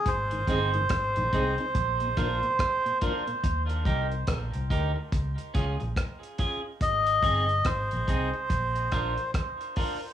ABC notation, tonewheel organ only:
X:1
M:4/4
L:1/16
Q:"Swing 16ths" 1/4=71
K:Ablyd
V:1 name="Tonewheel organ" clef=bass
z [A,,E,] [A,CE] [A,,E,] z [A,,E,] [A,CE] [CE] z B,, [F,B,D] B,, z B,, [F,B,D] B,, | z16 | z16 |]